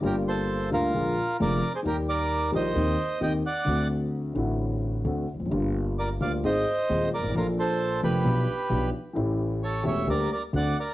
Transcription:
<<
  \new Staff \with { instrumentName = "Bandoneon" } { \time 4/4 \key g \minor \tempo 4 = 132 <g' bes'>8 <a' c''>4 <f' bes'>4. <bes' d''>8. <aes' c''>16 | <g' bes'>8 <bes' d''>4 <c'' ees''>4. <ees'' g''>8 <d'' fis''>8~ | <d'' fis''>8 r2. r8 | r4 <bes' d''>8 <d'' f''>8 <c'' ees''>4. <bes' d''>8 |
<f' bes'>8 <a' c''>4 <g' b'>2 r8 | r4 <a' cis''>8 <cis'' e''>8 <bes' d''>8 <bes' d''>8 <d'' fis''>8 <bes' d''>8 | }
  \new Staff \with { instrumentName = "Grand piano" } { \clef bass \time 4/4 \key g \minor <g,, g, d g bes f'>4. <d, d g bes f'>8 <bes,, bes, d aes bes f'>8 r8 <f,, f, d aes bes f'>8 r8 | <ees, ees g bes g'>4. <bes,, bes, ees g bes g'>8 <ees, ees bes c' g'>8 r8 <ees, ees bes c' g'>8 r8 | <d, d a c' fis'>4. <a,, a, d a c' fis'>4. <d, d a c' fis'>8 r32 e,32 f,32 fis,32 | <g,, g, d g bes f'>4. <d, d g bes f'>8 <aes,, aes, ees aes c' aes'>8 r8 <ees,, ees, ees aes c' aes'>8 r32 g,,32 aes,,32 a,,32 |
<bes,, bes, f bes d' a'>4. <f,, f, f bes d' a'>8 <b,, b, f b d' g'>8 r8 <b,, b, f b d' g'>8 r8 | <a,, a, e a cis' g'>4. <e,, e, e a cis' g'>8 <d, d g bes g'>8 r8 <d, d a c' fis'>8 r8 | }
  \new Staff \with { instrumentName = "Upright bass" } { \clef bass \time 4/4 \key g \minor g,,4~ g,,16. r32 d,16. r32 bes,,16. r8 r32 f,,16. r8 r32 | ees,4~ ees,16. r32 bes,,16. r32 ees,16. r8 r32 ees,16. r8 r32 | d,4~ d,16. r32 a,,4~ a,,16. r32 d,16. r16 e,,32 f,,32 fis,,32 | g,,4~ g,,16. r32 d,16. r32 aes,,16. r8 r32 ees,16. r16 g,,32 aes,,32 a,,32 |
bes,,4~ bes,,16. r32 f,,16. r32 b,,16. r8 r32 b,,16. r8 r32 | a,,4~ a,,16. r32 e,,16. r32 d,16. r8 r32 d,16. r8 r32 | }
>>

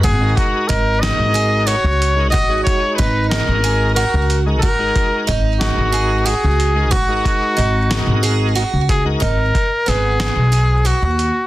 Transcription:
<<
  \new Staff \with { instrumentName = "Trumpet" } { \time 7/8 \key dis \phrygian \tempo 4 = 92 gis'8 fis'8 ais'8 dis''4 cis''4 | dis''8 cis''8 b'8 ais'4 ais'8. r16 | ais'4 r8 fis'4 gis'4 | fis'2~ fis'8 r8 gis'8 |
ais'4 gis'4. fis'4 | }
  \new Staff \with { instrumentName = "Twelve-string acoustic guitar" } { \time 7/8 \key dis \phrygian fis'4 dis'4 gis'8 fis'4 | fis'4 dis'4 gis'8 fis'4 | fis'4 dis'4 gis'8 fis'4 | fis'4 dis'4 gis'8 fis'4 |
dis'4 b4 gis'8 fis'4 | }
  \new Staff \with { instrumentName = "Tonewheel organ" } { \time 7/8 \key dis \phrygian r16 <gis dis' fis' ais'>8. r8 <gis dis' fis' ais'>4 r8. <gis dis' fis' ais'>16 | r16 <gis dis' fis' cis''>8. r8 <gis dis' fis' ais'>4 r8. <gis dis' fis' ais'>16 | r16 <gis dis' fis' ais'>8. r8 <gis dis' fis' ais'>4 r8. <gis dis' fis' ais'>16 | r16 <gis dis' fis' ais'>8. r8 <gis dis' fis' ais'>4 r8. <gis dis' fis' ais'>16 |
r2. r8 | }
  \new Staff \with { instrumentName = "Upright bass" } { \clef bass \time 7/8 \key dis \phrygian gis,,8 r8 gis,,8. gis,,4 cis,8. | gis,,8 r8 gis,,8. gis,,4 cis,8. | gis,,8 r8 gis,,8. gis,,4 cis,8. | gis,,8 r8 gis,,8. gis,,4 cis,8. |
gis,,8 r8 gis,,8. b,,4 dis,8 r16 | }
  \new DrumStaff \with { instrumentName = "Drums" } \drummode { \time 7/8 <hh bd>8 <hh bd>8 <hh bd>8 <hh sn>8 hh8 hh8 hh8 | <hh bd>8 <hh bd>8 <hh bd>8 <hh sn>8 hh8 hh8 hh8 | <hh bd>8 <hh bd>8 <hh bd>8 <hh sn>8 hh8 hh8 hh8 | <hh bd>8 <hh bd>8 hh8 <hh sn>8 hh8 hh8 <hh bd>8 |
<hh bd>8 <hh bd>8 <hh sn>8 <hh sn>8 hh8 hh8 hh8 | }
>>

